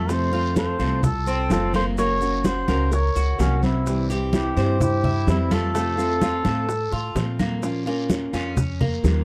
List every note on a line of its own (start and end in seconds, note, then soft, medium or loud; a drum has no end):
0.00 0.73 F2 medium
0.00 0.32 A3 medium
0.00 0.12 A4 medium
0.08 0.31 C3 medium
0.08 0.32 F3 medium
0.08 0.32 A3 medium
0.08 0.32 C4 medium
0.08 0.31 F4 medium
0.08 0.55 A4 medium
0.08 0.57 C5 loud
0.08 high bongo medium
0.08 high conga soft
0.08 long guiro medium
0.08 maracas medium
0.32 0.80 F3 medium
0.32 0.79 A3 medium
0.32 0.79 C4 medium
0.32 0.78 F4 medium
0.32 0.79 F4 medium
0.32 high conga soft
0.56 1.03 A4 medium
0.56 1.06 C5 medium
0.56 high bongo medium
0.56 high conga medium
0.56 short guiro medium
0.56 maracas medium
0.79 1.46 C2 loud
0.79 1.02 F3 medium
0.79 1.02 A3 medium
0.79 1.03 C4 medium
0.79 1.02 F4 medium
0.79 1.25 A4 medium
0.79 high conga soft
0.79 short guiro medium
0.79 maracas soft
1.03 1.50 F4 medium
1.03 1.51 A4 loud
1.03 muted steel-string acoustic guitar stroke medium
1.03 high bongo medium
1.03 high conga soft
1.03 low conga medium
1.03 long guiro medium
1.03 maracas medium
1.27 1.73 C4 medium
1.27 high conga soft
1.27 maracas medium
1.50 2.62 F#1 medium
1.50 1.97 F3 soft
1.50 1.97 A3 soft
1.50 1.97 C4 soft
1.50 1.73 F4 medium
1.50 1.98 F4 medium
1.50 1.74 A4 loud
1.50 high bongo medium
1.50 low bongo medium
1.50 high conga medium
1.50 short guiro medium
1.50 maracas medium
1.74 1.97 A#3 medium
1.74 1.81 A4 medium
1.74 1.86 C5 loud
1.74 high conga medium
1.74 short guiro medium
1.74 maracas soft
1.97 2.20 C#3 medium
1.97 2.20 F#3 medium
1.97 2.44 A#3 medium
1.97 2.21 A#3 medium
1.97 2.21 C#4 medium
1.97 2.20 F#4 medium
1.97 2.45 A#4 loud
1.97 2.48 C#5 loud
1.97 high bongo medium
1.97 high conga soft
1.97 long guiro medium
1.97 maracas medium
2.21 2.68 F#3 medium
2.21 2.68 A#3 medium
2.21 2.68 C#4 medium
2.21 2.67 F#4 medium
2.21 high conga soft
2.21 maracas medium
2.44 2.91 F#4 medium
2.44 2.68 F#4 medium
2.44 2.93 C5 loud
2.44 high bongo medium
2.44 high conga loud
2.44 short guiro medium
2.44 maracas medium
2.68 3.12 C#2 loud
2.68 2.91 F#3 medium
2.68 2.92 A#3 medium
2.68 2.91 C#4 medium
2.68 2.91 F#4 medium
2.68 3.14 A#4 medium
2.68 high bongo soft
2.68 high conga loud
2.68 short guiro medium
2.68 maracas soft
2.91 3.35 A#4 medium
2.91 3.37 C#5 loud
2.91 muted steel-string acoustic guitar stroke medium
2.91 high bongo medium
2.91 high conga soft
2.91 long guiro medium
2.91 maracas medium
3.15 3.37 C#2 medium
3.15 3.61 F#4 medium
3.15 high bongo soft
3.15 high conga soft
3.15 maracas medium
3.38 4.50 C2 medium
3.38 3.85 F#3 soft
3.38 3.61 A#3 medium
3.38 3.86 A#3 soft
3.38 3.86 C#4 soft
3.38 3.62 C#4 medium
3.38 3.86 F#4 medium
3.38 high bongo medium
3.38 low bongo medium
3.38 high conga soft
3.38 short guiro medium
3.38 maracas medium
3.62 4.06 C4 medium
3.62 4.07 E4 medium
3.62 high bongo soft
3.62 high conga medium
3.62 short guiro medium
3.62 maracas soft
3.86 4.08 C3 medium
3.86 4.09 E3 medium
3.86 4.09 G3 medium
3.86 4.09 C4 medium
3.86 4.08 E4 medium
3.86 high bongo medium
3.86 long guiro medium
3.86 maracas medium
4.09 4.57 E3 medium
4.09 4.57 G3 medium
4.09 4.56 C4 medium
4.09 4.55 E4 medium
4.09 4.55 G4 medium
4.09 high conga soft
4.09 maracas medium
4.33 4.77 E4 medium
4.33 4.78 G4 medium
4.33 high bongo medium
4.33 high conga loud
4.33 short guiro medium
4.33 maracas medium
4.56 5.23 G2 loud
4.56 4.79 E3 medium
4.56 4.80 G3 medium
4.56 4.80 C4 medium
4.56 4.79 E4 medium
4.56 5.03 C5 medium
4.56 high conga soft
4.56 short guiro medium
4.56 maracas soft
4.80 5.25 E4 medium
4.80 5.26 G4 medium
4.80 muted steel-string acoustic guitar stroke medium
4.80 high bongo medium
4.80 high conga soft
4.80 low conga medium
4.80 long guiro medium
4.80 maracas medium
5.04 5.49 E4 medium
5.04 high conga soft
5.04 low conga medium
5.27 6.39 F2 medium
5.27 5.73 E3 soft
5.27 5.74 G3 soft
5.27 5.51 C4 medium
5.27 5.74 C4 soft
5.27 5.75 E4 medium
5.27 5.56 E4 medium
5.27 high bongo medium
5.27 low bongo medium
5.27 high conga medium
5.27 short guiro medium
5.27 maracas medium
5.51 5.73 A3 medium
5.51 7.39 F4 medium
5.51 7.41 A4 loud
5.51 high conga medium
5.51 short guiro medium
5.51 maracas soft
5.74 5.97 C3 medium
5.74 5.97 F3 medium
5.74 6.20 A3 medium
5.74 5.98 A3 medium
5.74 5.97 C4 medium
5.74 5.96 F4 medium
5.74 high bongo medium
5.74 high conga soft
5.74 long guiro medium
5.74 maracas medium
5.98 6.45 F3 medium
5.98 6.45 A3 medium
5.98 6.44 C4 medium
5.98 6.44 F4 medium
5.98 high conga soft
5.98 maracas medium
6.21 6.44 F4 medium
6.21 high bongo medium
6.21 high conga loud
6.21 short guiro medium
6.21 maracas medium
6.45 6.89 A2 medium
6.45 6.68 F3 medium
6.45 6.68 A3 medium
6.45 6.68 C4 medium
6.45 6.68 F4 medium
6.45 6.91 A4 medium
6.45 high bongo soft
6.45 high conga loud
6.45 short guiro medium
6.45 maracas soft
6.69 muted steel-string acoustic guitar stroke medium
6.69 high bongo medium
6.69 high conga soft
6.69 long guiro medium
6.69 maracas medium
6.92 7.14 A2 medium
6.92 7.38 F4 medium
6.92 high bongo soft
6.92 high conga soft
7.15 8.27 A#2 medium
7.15 7.61 F3 soft
7.15 7.62 A3 soft
7.15 7.62 C4 soft
7.15 7.63 F4 soft
7.15 high bongo medium
7.15 low bongo medium
7.15 high conga soft
7.15 short guiro medium
7.15 maracas medium
7.39 7.62 A#3 medium
7.39 high bongo soft
7.39 high conga medium
7.39 short guiro medium
7.39 maracas soft
7.62 7.85 F3 medium
7.62 7.85 A#3 medium
7.62 7.86 C#4 medium
7.62 7.85 F4 medium
7.62 high bongo medium
7.62 high conga soft
7.62 long guiro medium
7.62 maracas medium
7.86 8.32 A#3 medium
7.86 8.33 A#3 medium
7.86 8.33 C#4 medium
7.86 8.32 F4 medium
7.86 high bongo soft
7.86 high conga soft
8.10 high bongo medium
8.10 high conga loud
8.10 short guiro medium
8.10 maracas medium
8.33 9.00 F2 medium
8.33 8.56 A#3 medium
8.33 8.79 C#4 medium
8.33 8.56 C#4 medium
8.33 8.56 F4 medium
8.33 high bongo soft
8.33 high conga soft
8.33 short guiro medium
8.33 maracas soft
8.57 muted steel-string acoustic guitar stroke medium
8.57 high bongo medium
8.57 high conga soft
8.57 low conga medium
8.57 long guiro medium
8.57 maracas medium
8.81 9.24 A#3 medium
8.81 high bongo soft
8.81 high conga soft
8.81 low conga medium
9.03 9.24 D#2 medium
9.03 9.24 F3 soft
9.03 9.24 A#3 soft
9.03 9.24 C#4 soft
9.03 9.24 F4 medium
9.03 high bongo soft
9.03 low bongo medium
9.03 high conga medium
9.03 short guiro medium
9.03 maracas medium